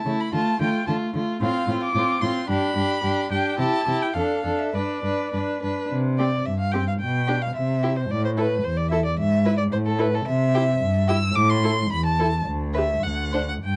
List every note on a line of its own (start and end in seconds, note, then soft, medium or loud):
0.00 0.22 A5 medium
0.05 0.14 C#3 soft
0.05 0.32 A3 soft
0.05 0.32 E4 soft
0.20 0.33 B5 soft
0.33 0.41 D3 soft
0.33 0.59 A3 soft
0.33 0.59 F4 soft
0.33 0.60 A5 medium
0.60 0.68 D3 soft
0.60 0.87 A3 soft
0.60 0.87 F4 soft
0.60 0.87 G5 medium
0.87 0.96 D3 soft
0.87 1.14 A3 soft
0.87 1.14 F4 soft
0.87 0.95 A5 soft
1.14 1.22 D3 soft
1.14 1.41 A3 soft
1.14 1.41 F4 soft
1.41 1.49 A2 medium
1.41 1.67 C4 soft
1.41 1.68 F4 soft
1.41 1.79 F5 medium
1.67 1.75 A2 soft
1.67 1.95 C4 soft
1.67 1.94 F4 soft
1.83 2.23 D6 medium
1.95 2.03 A2 soft
1.95 2.22 C4 soft
1.95 2.21 F4 soft
2.22 2.30 A2 soft
2.22 2.48 C4 soft
2.22 2.49 F4 soft
2.22 2.49 C6 medium
2.49 2.57 G2 medium
2.49 2.76 D4 soft
2.49 2.75 G4 soft
2.49 3.30 B5 medium
2.75 2.83 G2 soft
2.75 3.03 D4 soft
2.75 3.02 G4 soft
3.03 3.11 G2 soft
3.03 3.31 D4 soft
3.03 3.30 G4 soft
3.31 3.39 G2 soft
3.31 3.58 D4 soft
3.31 3.59 G4 soft
3.31 3.58 G5 medium
3.59 3.67 C3 medium
3.59 3.86 E4 soft
3.59 3.86 G4 soft
3.59 4.04 A5 medium
3.87 3.95 C3 soft
3.87 4.15 E4 soft
3.87 4.14 G4 soft
4.02 4.15 G5 medium
4.14 4.23 F2 soft
4.14 4.45 D4 soft
4.14 4.43 A4 soft
4.14 4.60 F5 soft
4.44 4.52 F2 soft
4.44 4.74 D4 soft
4.44 4.73 A4 soft
4.59 4.76 E5 soft
4.74 4.82 G2 soft
4.74 5.04 D4 soft
4.74 5.03 B4 soft
4.74 5.33 D5 soft
5.03 5.11 G2 soft
5.03 5.33 D4 soft
5.03 5.32 B4 soft
5.33 5.41 G2 soft
5.33 5.63 D4 soft
5.33 5.62 B4 soft
5.63 5.71 G2 soft
5.63 5.91 D4 soft
5.63 5.91 B4 soft
5.92 6.38 C3 medium
6.19 6.28 C4 soft
6.19 6.27 G4 soft
6.19 6.47 D5 medium
6.46 6.92 G2 soft
6.46 6.59 E5 medium
6.59 6.74 F5 medium
6.72 6.83 C4 soft
6.72 6.81 G4 soft
6.72 6.87 G5 medium
6.88 6.93 F5 medium
7.00 7.46 B2 medium
7.00 7.43 G5 medium
7.28 7.37 D4 soft
7.28 7.36 G4 soft
7.42 7.55 F5 medium
7.55 8.01 C3 medium
7.55 7.98 E5 medium
7.83 7.92 E4 soft
7.83 7.91 G4 soft
7.97 8.12 C5 medium
8.10 8.55 A2 medium
8.10 8.24 D5 medium
8.25 8.30 C5 medium
8.37 8.45 E4 soft
8.37 8.45 A4 soft
8.37 8.66 B4 medium
8.64 9.09 E2 medium
8.64 8.79 C5 medium
8.77 8.90 D5 medium
8.90 8.99 E4 soft
8.90 9.00 A4 soft
8.90 9.04 E5 medium
9.05 9.18 D5 medium
9.18 9.62 G#2 medium
9.18 9.57 E5 medium
9.45 9.53 E4 soft
9.45 9.53 B4 soft
9.58 9.63 D5 medium
9.71 10.18 A2 medium
9.71 9.77 C5 medium
9.86 10.02 A4 medium
9.99 10.07 E4 soft
9.99 10.07 A4 soft
9.99 10.16 B4 medium
10.14 10.27 A4 medium
10.26 10.72 C3 medium
10.26 11.10 E5 medium
10.55 10.64 E4 medium
10.55 10.63 G4 medium
10.81 11.27 G2 medium
11.08 11.17 E4 soft
11.08 11.16 G4 soft
11.08 11.37 E6 medium
11.36 11.82 A2 medium
11.36 11.51 D6 medium
11.49 11.91 C6 medium
11.63 11.72 E4 medium
11.63 11.71 A4 soft
11.92 12.38 E2 medium
11.92 12.05 B5 medium
12.05 12.46 A5 medium
12.19 12.28 E4 soft
12.19 12.27 A4 soft
12.46 12.94 D2 medium
12.74 12.85 G4 medium
12.74 12.82 B4 soft
12.74 13.05 E5 medium
13.03 13.53 D2 medium
13.03 13.48 F#5 medium
13.33 13.42 D4 soft
13.33 13.41 C5 soft
13.49 13.55 F#5 medium
13.63 13.76 G2 medium
13.63 13.76 G5 medium